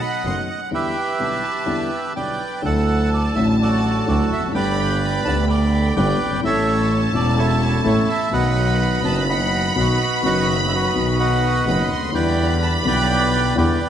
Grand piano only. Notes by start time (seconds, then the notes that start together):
0.24 F#1 F#2 D#3 A3 B3 F#4
0.71 E2 D3 E3 G3 B3 E4
1.19 B1 B2 D3 G3 B3 E4
1.66 E2 D3 E3 G3 B3 E4
2.17 B1 B2 D3 G3 B3 E4
2.62 D2 D3 F#3 A3 E4
3.35 A1 A2 D3 F#3 A3 E4
4.07 D2 D3 F#3 A3 E4
4.37 E2
4.44 F2
4.48 F#2
4.52 G1 G2 D3 A3 B3
4.57 G4
5.26 D2 D3 A3 B3 G4
5.96 G1 G2 D3 A3 B3 G4
6.25 F#1
6.32 G1
6.37 G#1 E3
6.43 A1 A2 A3 C#4 A4
7.11 E1 E2 E3 A3 C#4
7.15 A4
7.83 A1 A2 E3 A3 C#4 A4
8.30 B1 B2 D#3 F#3 B3
8.34 F#4
9.01 F#1 F#2 D#3 F#3 B3
9.05 F#4
9.75 B1 B2 D#3 F#3 B3 F#4
10.21 F#1 F#2 D#3 F#3 B3
10.26 F#4
10.94 B1 B2 D#3 F#3 B3 F#4
11.65 F#1 F#2 D#3 F#3 B3 F#4
11.97 C#2
12.02 D2
12.08 D#2 D3
12.14 E2 E3 G3 B3 E4
12.83 B1 B2 D3 G3 B3
12.87 E4
13.55 E2 D3 E3 G3 B3 E4